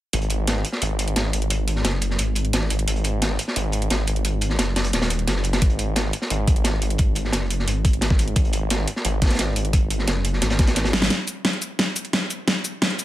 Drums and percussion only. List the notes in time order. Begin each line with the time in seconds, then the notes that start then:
0.13 closed hi-hat
0.22 closed hi-hat
0.30 closed hi-hat
0.47 snare, closed hi-hat
0.65 closed hi-hat
0.72 snare
0.82 closed hi-hat
0.99 closed hi-hat
1.08 closed hi-hat
1.16 snare, closed hi-hat
1.33 closed hi-hat
1.42 closed hi-hat
1.50 closed hi-hat
1.68 closed hi-hat
1.76 snare
1.85 snare, closed hi-hat
2.02 closed hi-hat
2.11 snare
2.19 closed hi-hat
2.35 closed hi-hat
2.45 closed hi-hat
2.53 snare, closed hi-hat
2.61 snare
2.70 closed hi-hat
2.79 closed hi-hat
2.88 closed hi-hat
2.96 closed hi-hat
3.04 closed hi-hat
3.22 snare, closed hi-hat
3.39 closed hi-hat
3.48 snare
3.56 closed hi-hat
3.72 closed hi-hat
3.82 closed hi-hat
3.90 snare, closed hi-hat
4.07 closed hi-hat
4.16 closed hi-hat
4.25 closed hi-hat
4.41 closed hi-hat
4.50 snare
4.59 snare, closed hi-hat
4.76 snare, closed hi-hat
4.84 closed hi-hat
4.93 snare, closed hi-hat
5.02 snare, closed hi-hat
5.10 closed hi-hat
5.19 closed hi-hat
5.27 snare, closed hi-hat
5.36 snare
5.44 closed hi-hat
5.53 snare, closed hi-hat
5.61 kick, closed hi-hat
5.70 closed hi-hat
5.79 closed hi-hat
5.96 snare, closed hi-hat
6.13 closed hi-hat
6.22 snare
6.30 closed hi-hat
6.48 kick, closed hi-hat
6.56 closed hi-hat
6.64 snare, closed hi-hat
6.82 closed hi-hat
6.90 closed hi-hat
6.98 kick, closed hi-hat
7.15 closed hi-hat
7.25 snare
7.32 snare, closed hi-hat
7.50 closed hi-hat
7.59 snare
7.68 closed hi-hat
7.85 kick, closed hi-hat
7.93 closed hi-hat
8.01 snare, closed hi-hat
8.10 kick, snare
8.19 closed hi-hat
8.28 closed hi-hat
8.36 kick, closed hi-hat
8.45 closed hi-hat
8.53 closed hi-hat
8.70 snare, closed hi-hat
8.87 closed hi-hat
8.96 snare
9.05 closed hi-hat
9.22 kick, snare, closed hi-hat
9.26 snare, closed hi-hat
9.30 snare, closed hi-hat
9.35 snare, closed hi-hat
9.39 snare, closed hi-hat
9.56 closed hi-hat
9.65 closed hi-hat
9.73 kick, closed hi-hat
9.90 closed hi-hat
9.99 snare
10.07 snare, closed hi-hat
10.25 closed hi-hat
10.33 snare
10.42 snare, closed hi-hat
10.50 snare, closed hi-hat
10.59 kick, snare, closed hi-hat
10.67 snare, closed hi-hat
10.76 snare, closed hi-hat
10.85 snare, closed hi-hat
10.93 snare, closed hi-hat
11.02 snare, closed hi-hat
11.10 kick, snare, closed hi-hat
11.28 closed hi-hat, shaker
11.45 kick, snare, closed hi-hat
11.53 closed hi-hat
11.62 closed hi-hat, shaker
11.79 kick, snare, closed hi-hat
11.96 closed hi-hat, shaker
12.05 closed hi-hat
12.13 kick, snare, closed hi-hat
12.30 closed hi-hat, shaker
12.48 kick, snare, closed hi-hat
12.65 closed hi-hat, shaker
12.82 kick, snare, closed hi-hat
12.90 closed hi-hat
12.99 closed hi-hat, shaker